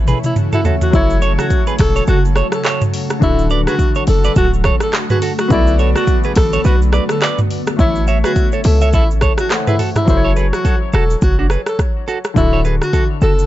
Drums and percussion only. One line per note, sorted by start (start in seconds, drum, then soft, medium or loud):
0.08 mid tom medium
0.08 shaker medium
0.24 mid tom medium
0.24 shaker loud
0.36 mid tom medium
0.36 shaker medium
0.53 mid tom medium
0.53 shaker medium
0.65 floor tom loud
0.65 shaker soft
0.81 floor tom medium
0.81 shaker medium
0.93 kick loud
0.93 shaker medium
1.10 shaker soft
1.22 shaker medium
1.39 cross-stick medium
1.39 shaker loud
1.50 kick loud
1.50 shaker medium
1.67 shaker medium
1.79 kick loud
1.79 cross-stick loud
1.79 open hi-hat medium
1.79 shaker medium
1.96 shaker loud
2.07 shaker medium
2.25 shaker soft
2.36 cross-stick medium
2.36 shaker medium
2.52 cross-stick loud
2.52 shaker loud
2.65 cross-stick medium
2.65 clap loud
2.65 shaker medium
2.81 mid tom medium
2.81 shaker medium
2.94 open hi-hat medium
2.94 shaker soft
3.10 cross-stick medium
3.10 shaker loud
3.22 kick loud
3.22 shaker medium
3.39 shaker soft
3.50 shaker medium
3.67 cross-stick medium
3.67 shaker loud
3.79 kick loud
3.79 shaker medium
3.95 shaker medium
4.07 open hi-hat medium
4.07 shaker medium
4.24 shaker loud
4.36 kick medium
4.36 shaker medium
4.53 shaker soft
4.64 kick medium
4.64 cross-stick medium
4.64 shaker medium
4.80 cross-stick medium
4.80 shaker loud
4.93 cross-stick loud
4.93 clap loud
4.93 shaker medium
5.10 mid tom medium
5.10 shaker medium
5.22 open hi-hat medium
5.22 shaker medium
5.38 cross-stick loud
5.38 shaker loud
5.50 kick loud
5.50 shaker medium
5.67 shaker soft
5.79 shaker medium
5.96 cross-stick medium
5.96 shaker medium
6.07 kick loud
6.07 shaker medium
6.24 shaker medium
6.36 kick loud
6.36 cross-stick loud
6.36 open hi-hat medium
6.36 shaker medium
6.53 shaker loud
6.64 shaker medium
6.82 shaker soft
6.93 cross-stick loud
6.93 shaker medium
7.09 cross-stick loud
7.09 shaker loud
7.22 cross-stick loud
7.22 clap loud
7.22 shaker medium
7.39 mid tom medium
7.39 shaker medium
7.51 open hi-hat medium
7.51 shaker soft
7.67 cross-stick loud
7.67 shaker loud
7.79 kick loud
7.79 shaker medium
7.96 shaker soft
8.07 shaker medium
8.24 cross-stick medium
8.24 shaker loud
8.36 kick loud
8.36 shaker medium
8.52 shaker medium
8.64 open hi-hat medium
8.64 shaker medium
8.81 shaker loud
8.93 kick loud
8.93 shaker medium
9.11 shaker soft
9.21 kick loud
9.21 cross-stick loud
9.21 shaker medium
9.38 cross-stick loud
9.38 shaker loud
9.51 cross-stick loud
9.51 clap loud
9.51 shaker medium
9.67 mid tom medium
9.67 shaker medium
9.79 mid tom medium
9.79 open hi-hat medium
9.79 shaker soft
9.96 cross-stick medium
9.96 mid tom medium
9.96 shaker medium
10.08 kick loud
10.08 shaker medium
10.36 shaker medium
10.53 cross-stick medium
10.53 shaker medium
10.65 kick loud
10.65 shaker medium
10.93 cross-stick medium
10.93 shaker medium
11.10 shaker medium
11.22 kick loud
11.22 shaker medium
11.50 cross-stick medium
11.50 shaker medium
11.66 cross-stick medium
11.66 shaker medium
11.79 kick loud
11.79 cross-stick medium
11.79 shaker medium
12.08 shaker soft
12.24 cross-stick medium
12.24 shaker medium
12.36 kick loud
12.36 shaker medium
12.65 shaker medium
12.82 cross-stick medium
12.82 shaker medium
12.93 kick loud
12.93 shaker medium
13.21 shaker soft
13.39 shaker medium